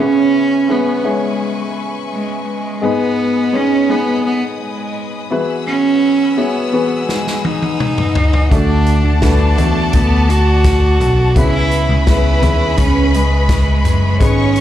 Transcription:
Already playing: B3 C#4
0.00 C#3 C#4 E4 G#4 B4 E5 G#5 C#6
0.68 B3 C#4 E4 G#4 B4
1.04 G#3 B3 C#4 E4 G#4 C#5
2.13 G#3
2.48 G#3
2.81 G#2 G#3 B3 D#4 G#4 B4 D#5 G#5 D#6
3.52 G#3 B3 C#4 D#4 G#4 C#5
3.88 G#3 B3 D#4 G#4 B4
4.26 B3
4.62 G#3
5.30 E3 B3 E4 F#4 G#4 B4 F#5 G#5 E6
5.67 C#4
6.37 B3 E4 F#4 G#4 C#5
6.72 E3 B3 F#4 G#4 B4
7.09 G#3, snare
7.27 snare
7.45 D#4, high tom
7.62 high tom
7.80 mid tom
7.98 mid tom
8.15 floor tom
8.33 floor tom
8.51 D2 D3 A3 D4 F#4 A4 D5 A5 D6, kick, closed hi-hat
8.86 closed hi-hat
9.05 D2
9.22 A3 D4 F#4 A4 B4, kick, snare, closed hi-hat
9.56 E2 A3 D4 E4 A4 D5, closed hi-hat, floor tom
9.64 F#4
9.93 D2 B3, kick, closed hi-hat
10.30 F#4, closed hi-hat
10.64 kick, snare, closed hi-hat
11.00 B1, closed hi-hat, floor tom
11.35 C#2 C#3 B3 C#4 E4 G#4 B4 E5 G#5 B5 C#6, kick, closed hi-hat
11.71 closed hi-hat
11.89 C#2
12.06 B3 C#4 E4 G#4 B4, kick, snare, closed hi-hat
12.42 D#2 B3 C#4 E4 G#4 B4, closed hi-hat, floor tom
12.77 C#2 C#4, kick, closed hi-hat
13.14 G#3, closed hi-hat
13.49 kick, snare, closed hi-hat
13.85 F#1, closed hi-hat, floor tom
14.19 G#1 G#2 G#3 B3 C#4 D#4 G#4 B4 C#5 D#5 C#6 D#6, kick, closed hi-hat
14.56 closed hi-hat

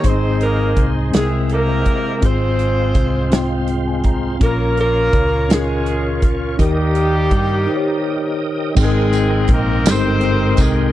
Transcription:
0.03 G#1 G#2 G#3 B3 D#4 G#4 C5 D#5 C6, kick, closed hi-hat
0.07 C4 D#4 G#4 C5
0.41 A#4, closed hi-hat
0.45 A#3 A#4
0.76 C2, kick, closed hi-hat
1.12 C2 C3 G#3 C4 C#4 A#4 E5 G5 A#5, snare, closed hi-hat
1.16 G#3 E4 G#4
1.49 A#3 E4 G4 A#4, closed hi-hat
1.86 kick, closed hi-hat
2.21 G#1 G#2 C4 F4 G#4 C5 F5 C6, kick, closed hi-hat
2.26 C5
2.59 closed hi-hat
2.95 C2, kick, closed hi-hat
3.31 C4 F4 G5, snare, closed hi-hat
3.68 G5, closed hi-hat
3.88 G#5
4.04 A#5, kick, closed hi-hat
4.40 A#1 A#2 A#3 C#4 F4 A4 A#4 C#5 C#6, kick, closed hi-hat
4.49 A#4
4.77 A#3 C#4 F4 A#4, closed hi-hat
5.13 C#2, kick, closed hi-hat
5.48 C#4 F4 A#4, snare, closed hi-hat
5.52 G#3 C#4 G#4
5.86 closed hi-hat
6.22 kick, closed hi-hat
6.58 D#2 D#3 G3 A#3 D#4 G4 A#4 D#5 G5 D#6, kick, closed hi-hat
6.95 closed hi-hat
7.31 G2, kick, closed hi-hat
7.66 D#4 G4 C5
7.76 C#5
8.75 G#1 G#2 G#3 C4 D#4 G#4 A#4 D#5 G5 C6, kick, crash, tambourine
8.80 G#3 C4 D#4 G#4
8.85 A#4
9.13 closed hi-hat, tambourine
9.48 A#1, kick, closed hi-hat
9.53 A#3 A#4
9.85 G1 G#3 C4 D#4 G4 A4 C5, snare, closed hi-hat, tambourine
9.94 A#4
10.21 closed hi-hat
10.57 C2 G#3 G#4, kick, closed hi-hat, tambourine

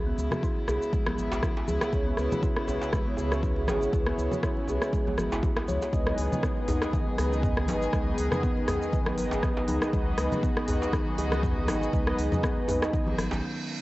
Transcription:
Already playing: C#2 C#3 G#3 B3 E4
0.06 B3
0.18 C#2, muted conga, cabasa
0.31 F#4, cross-stick, high conga, low conga, cabasa
0.43 E4, kick, cabasa
0.56 muted conga
0.68 B1 G#4, cross-stick, djembe tone, cabasa
0.82 cabasa
0.93 G#3, kick, muted conga, cabasa
1.07 B3, cross-stick, djembe tone, high conga
1.18 G#1, high conga, cabasa
1.32 G#1 F#4, djembe slap, muted conga, cabasa
1.43 E4, kick, cross-stick, djembe tone, high conga, cabasa
1.57 djembe slap
1.68 C#2 G#4, high conga, cabasa
1.81 cross-stick, djembe slap, muted conga, cabasa
1.92 C#2 C#4 E4 G#4 B4 C#5, kick, high conga, cabasa
2.07 B3
2.17 C#2, cross-stick, muted conga, cabasa
2.32 F#4, high conga, low conga, cabasa
2.43 E4, kick, cabasa
2.56 cross-stick, muted conga
2.68 B1 G#4, djembe tone, cabasa
2.81 djembe slap, cabasa
2.92 G#3, kick, cross-stick, muted conga, djembe tone, cabasa
3.07 B3
3.17 C#2 C#4 E4 G#4 B4 C#5, djembe tone, cabasa
3.31 F#4, cross-stick, muted conga, high conga, cabasa
3.43 E4, kick, high conga, cabasa
3.56 djembe tone
3.67 G#1 G#4, cross-stick, djembe slap, high conga, cabasa
3.81 muted conga, cabasa
3.93 C#2 C#4 E4 G#4 B4 C#5, kick, high conga, cabasa
4.06 B3, cross-stick
4.18 C#2, muted conga, cabasa
4.31 F#4, high conga, low conga, cabasa
4.43 E4, kick, cross-stick, cabasa
4.57 muted conga
4.68 B1 G#4, djembe tone, cabasa
4.82 cross-stick, cabasa
4.93 G#3, kick, muted conga, cabasa
5.07 B3, high conga, djembe tone
5.18 G#1 F#4, cross-stick, high conga, cabasa
5.31 G#1 E4, muted conga, djembe slap, cabasa
5.43 F#4, kick, djembe tone, high conga, cabasa
5.57 cross-stick, djembe slap
5.68 C#2 C#5, high conga, cabasa
5.82 muted conga, djembe slap, cabasa
5.93 C#2 D#3 G#3 B3 D#4 G#4 B4 D#5, kick, high conga, cabasa
6.07 F#3, cross-stick
6.18 C#2, open hi-hat, muted conga, cabasa
6.32 C#4, high conga, low conga, cabasa
6.43 B3, kick, cross-stick, cabasa
6.57 muted conga
6.68 B1 D#4, mid tom, open hi-hat, djembe tone, cabasa
6.82 cross-stick, djembe slap, cabasa
6.93 D#3, kick, muted conga, djembe tone, cabasa
7.07 F#3
7.18 C#2 B3 D#4 G#4 B4 D#5, cross-stick, open hi-hat, djembe tone, cabasa
7.31 C#4, muted conga, high conga, cabasa
7.42 B3, kick, mid tom, high conga, cabasa
7.57 cross-stick, djembe tone
7.68 G#1 D#4, open hi-hat, djembe slap, high conga, cabasa
7.82 muted conga, cabasa
7.93 C#2 G#3 B3 D#4 G#4 B4 D#5, kick, cross-stick, high conga, cabasa
8.07 F#3
8.18 C#2, open hi-hat, muted conga, cabasa
8.32 C#4, cross-stick, mid tom, high conga, low conga, cabasa
8.43 B3, kick, cabasa
8.57 muted conga
8.68 B1 D#4, cross-stick, mid tom, open hi-hat, djembe tone, cabasa
8.82 cabasa
8.92 D#3, kick, muted conga, cabasa
9.06 F#3, cross-stick, high conga, djembe tone
9.17 G#1 B3 D#4 G#4 B4 D#5, open hi-hat, high conga, cabasa
9.31 G#1 C#4, djembe slap, muted conga, cabasa
9.43 B3, kick, cross-stick, high conga, djembe tone, cabasa
9.57 djembe slap
9.68 C#2 D#4, open hi-hat, high conga, cabasa
9.81 cross-stick, muted conga, djembe slap, cabasa
9.93 C#2 G#3 B3 D#4 F#4 G#4 B4 D#5, kick, high conga, cabasa
10.07 F#3
10.18 C#2, cross-stick, open hi-hat, muted conga, cabasa
10.32 C#4, high conga, low conga, cabasa
10.43 B3, kick, cabasa
10.57 cross-stick, muted conga
10.68 B1 D#4, mid tom, open hi-hat, djembe tone, cabasa
10.82 djembe slap, cabasa
10.93 D#3, kick, cross-stick, muted conga, djembe tone, cabasa
11.07 F#3
11.18 C#2 B3 D#4 G#4 B4 D#5, open hi-hat, djembe tone, cabasa
11.32 C#4, cross-stick, muted conga, high conga, cabasa
11.43 B3, kick, mid tom, high conga, cabasa
11.58 djembe tone
11.67 G#1 D#4, cross-stick, open hi-hat, djembe slap, high conga, cabasa
11.81 muted conga, cabasa
11.93 C#2 G#3 B3 D#4 G#4 B4 D#5, kick, high conga, low conga, cabasa
12.07 F#3, cross-stick
12.18 C#2, open hi-hat, muted conga, cabasa
12.32 C#4, mid tom, high conga, low conga, cabasa
12.43 B3, kick, cross-stick, cabasa
12.57 muted conga
12.68 B1 D#4, mid tom, open hi-hat, djembe tone, cabasa
12.82 cross-stick, djembe slap, cabasa
12.93 D#3, kick, reverse cymbal, muted conga, cabasa
13.07 F#3, high conga, djembe tone
13.18 G#1, cross-stick, open hi-hat, high conga, cabasa
13.31 G#1 C#4, djembe slap, muted conga, cabasa

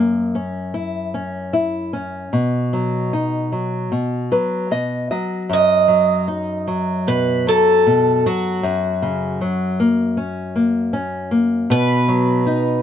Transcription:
Already playing: F#2 A#3
0.35 C#4
0.74 E4
1.14 C#4
1.53 E4
1.93 C#4
2.33 B2
2.73 F#3
3.13 D#4
3.52 F#3
3.92 B2
4.32 F#3 B4
4.71 B2 D#5
5.11 F#3 D#5
5.50 F#2 D#5
5.88 F#3
6.28 D#4
6.67 F#3
7.07 B2 B4
7.47 F#3 A4
7.87 B2
8.26 F#3 F#4
8.63 F#2
9.02 C#3
9.41 F#3
9.80 A#3
10.17 C#4
10.56 A#3
10.93 C#4
11.31 A#3
11.70 B2 B4
12.08 F#3
12.46 D#4

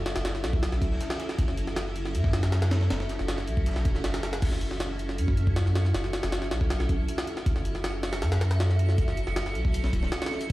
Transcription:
Already playing: F#1 C#4 E4 F#4 A4 E5
0.06 snare, closed hi-hat
0.16 F#1, snare, closed hi-hat
0.25 snare, closed hi-hat
0.35 snare
0.44 B1, snare, closed hi-hat
0.53 kick
0.62 snare, closed hi-hat
0.72 snare
0.82 kick, closed hi-hat
0.92 snare
1.00 snare, closed hi-hat
1.10 snare, closed hi-hat
1.20 snare, closed hi-hat
1.29 snare, closed hi-hat
1.38 F#1 C#4 E4 F#4 A4 E5, kick, closed hi-hat
1.48 snare
1.57 closed hi-hat
1.67 snare
1.76 snare, closed hi-hat
1.87 closed hi-hat
1.96 closed hi-hat
2.05 snare, closed hi-hat
2.15 F#2, closed hi-hat
2.24 kick, snare
2.33 snare, closed hi-hat
2.43 snare, closed hi-hat
2.52 snare, closed hi-hat
2.62 snare, closed hi-hat
2.71 snare, closed hi-hat
2.81 snare
2.90 F#1 C#4 E4 F#4 A4 E5, snare, closed hi-hat
3.00 snare
3.09 snare, closed hi-hat
3.19 F#1, snare
3.28 snare, closed hi-hat
3.38 snare
3.47 B1, closed hi-hat
3.57 kick
3.66 snare, closed hi-hat
3.71 snare, closed hi-hat
3.76 snare, closed hi-hat
3.85 E1, kick, closed hi-hat
3.95 snare
4.04 F#1, snare, closed hi-hat
4.14 snare, closed hi-hat
4.23 snare, closed hi-hat
4.33 snare, closed hi-hat
4.42 F#1 C#4 E4 F#4 A4 E5 C#7, kick, closed hi-hat, crash
4.52 snare
4.61 closed hi-hat
4.71 snare
4.80 snare, closed hi-hat
4.99 closed hi-hat
5.09 snare
5.18 F#2, closed hi-hat
5.28 kick
5.37 closed hi-hat
5.47 kick
5.56 snare, closed hi-hat
5.66 snare
5.75 snare, closed hi-hat
5.85 snare
5.94 F#1 C#4 E4 F#4 A4 E5, snare, closed hi-hat
6.04 snare
6.13 snare, closed hi-hat
6.23 F#1, snare, closed hi-hat
6.32 snare, closed hi-hat
6.42 snare
6.51 B1, snare, closed hi-hat
6.61 kick
6.70 snare, closed hi-hat
6.80 snare
6.89 kick, closed hi-hat
7.08 closed hi-hat
7.18 snare
7.27 closed hi-hat
7.37 snare
7.46 F#1 C#4 E4 F#4 A4 E5, kick, closed hi-hat
7.56 snare
7.65 closed hi-hat
7.75 snare
7.84 snare, closed hi-hat
8.03 snare, closed hi-hat
8.13 snare, closed hi-hat
8.22 F#2, snare, closed hi-hat
8.32 snare, closed hi-hat
8.41 snare, closed hi-hat
8.51 snare, closed hi-hat
8.60 snare, closed hi-hat
8.70 snare
8.79 closed hi-hat
8.89 snare
8.98 F#1 C#4 E4 F#4 A4 E5, kick, closed hi-hat
9.08 snare
9.17 closed hi-hat
9.27 F#1, snare
9.36 snare, closed hi-hat
9.46 snare
9.55 B1, closed hi-hat
9.65 kick
9.74 closed hi-hat
9.84 snare
9.93 kick, closed hi-hat
10.03 snare
10.12 snare, closed hi-hat
10.22 snare, closed hi-hat
10.26 snare, closed hi-hat
10.31 snare
10.41 closed hi-hat

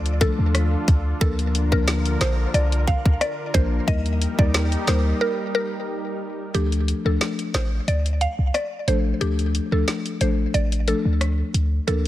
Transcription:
Already playing: D2 D3 D4 F4 A4
0.06 closed hi-hat
0.21 F3 A3 D4 A4, kick, closed hi-hat
0.39 D#2
0.55 cross-stick, closed hi-hat
0.88 D2, kick, closed hi-hat
1.21 D2 D3 F3 A#3 D4 A4 A#4, kick, closed hi-hat
1.39 closed hi-hat
1.55 closed hi-hat
1.72 F3 A#3 D4 A#4, kick
1.88 snare, closed hi-hat
2.06 closed hi-hat
2.21 A#1 C5, snare, closed hi-hat
2.54 C2 D5, closed hi-hat
2.72 closed hi-hat
2.87 F5, kick, closed hi-hat
3.05 D2, kick
3.21 D5, cross-stick, closed hi-hat
3.54 A#1 F3 A#3 D4 A#4 C5, kick, closed hi-hat
3.87 D#2 G3 A#3 D#4 G4 A#4 D#5, kick, closed hi-hat
4.06 closed hi-hat
4.22 closed hi-hat
4.38 D#2 G3 A#3 D#4 A#4 D5, kick
4.54 cross-stick, snare, closed hi-hat
4.72 closed hi-hat
4.87 D2 G3 A#3 D#4 A#4 C5, snare, closed hi-hat
5.21 A#4
5.55 A#4
6.54 D2 F3 A3 D4 G4 A4, closed hi-hat
6.72 closed hi-hat
6.88 closed hi-hat
7.05 D2 F3 A3 D4 A4
7.21 snare, closed hi-hat
7.39 closed hi-hat
7.54 A1 C5, snare, closed hi-hat
7.88 D2 D5, closed hi-hat
8.06 closed hi-hat
8.21 F5, closed hi-hat
8.39 C2
8.54 D5, cross-stick, closed hi-hat
8.88 A1 F3 A3 D4 A4 C5, closed hi-hat
9.21 D2 F3 A3 D4 G4 A4, closed hi-hat
9.39 closed hi-hat
9.55 closed hi-hat
9.72 D2 F3 A3 D4 A4
9.88 snare, closed hi-hat
10.06 closed hi-hat
10.21 A1 F3 A3 D4 A4 C5, closed hi-hat
10.54 A1 D5, closed hi-hat
10.72 closed hi-hat
10.88 F3 A3 D4 A4, closed hi-hat
11.05 D2
11.21 cross-stick, closed hi-hat
11.54 D2, closed hi-hat
11.88 D2 F3 A#3 D4 A4 A#4, closed hi-hat

